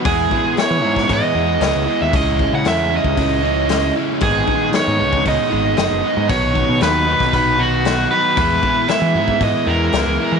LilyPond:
<<
  \new Staff \with { instrumentName = "Overdriven electric guitar" } { \time 4/4 \key e \lydian \tempo 4 = 116 gis'4 cis''4 dis''4 dis''8. e''16 | dis''8. fis''16 e''8 dis''2 r8 | gis'4 cis''4 dis''4 dis''4 | cis''4 b'4 b'8 fis'4 b'8 |
b'4 e''4 dis''8 ais'4. | }
  \new Staff \with { instrumentName = "Overdriven electric guitar" } { \time 4/4 \key e \lydian <e gis b e'>8 <gis b e'>8 <e gis b e'>8 <e gis b e'>8 <e gis b e'>8 <e gis b e'>8 <e gis b e'>8 <gis b e'>8 | <cis gis cis' e'>8 <gis cis' e'>8 <cis gis cis' e'>8 <cis gis cis' e'>8 <cis gis cis' e'>8 <cis gis cis' e'>8 <cis gis cis' e'>8 <gis cis' e'>8 | <gis, dis gis b dis'>8 <gis b dis'>8 <dis gis b dis'>8 <gis, dis gis b dis'>8 <dis gis b dis'>8 <gis, dis gis b dis'>8 <dis gis b dis'>8 <gis b dis'>8 | <b, dis fis b dis'>8 <fis b dis'>8 <dis fis b dis'>8 <b, dis fis b dis'>8 <dis fis b dis'>8 <b, dis fis b dis'>8 <dis fis b dis'>8 <fis b dis'>8 |
<e gis b e'>8 <gis b e'>8 <e gis b e'>8 <e gis b e'>8 <e gis b e'>8 <e gis b e'>8 <e gis b e'>8 <gis b e'>8 | }
  \new Staff \with { instrumentName = "Picked electric bass" } { \clef bass \time 4/4 \key e \lydian e,8 r8. e16 gis,8 gis,16 r16 e,8 cis,16 cis,16 r16 dis,16 | cis,8. cis16 e,8. cis,2 r16 | gis,,8 r8. gis,16 cis,8 cis,16 r16 gis,,8 fis,,16 fis,,16 r16 gis,16 | b,,8. b,16 dis,8. b,,2 r16 |
e,8 r8. e16 gis,8 gis,16 r16 e,8 cis,16 cis,16 r16 e16 | }
  \new DrumStaff \with { instrumentName = "Drums" } \drummode { \time 4/4 <hho bd>8 bd8 <hho sn>8. <bd sn>16 <hho bd>4 <hho sn>4 | <hho bd>8 bd8 <hho sn>8. bd16 <hho bd>4 <hho sn>4 | <hho bd>8 bd8 <hho sn>8. bd16 <hho bd>4 <hho sn>4 | <hho bd>8 bd8 <hho sn>8. <bd sn>16 <hho bd>4 <hho sn>4 |
<hho bd>8 bd8 <hho sn>8. bd16 <hho bd>4 <hho sn>4 | }
>>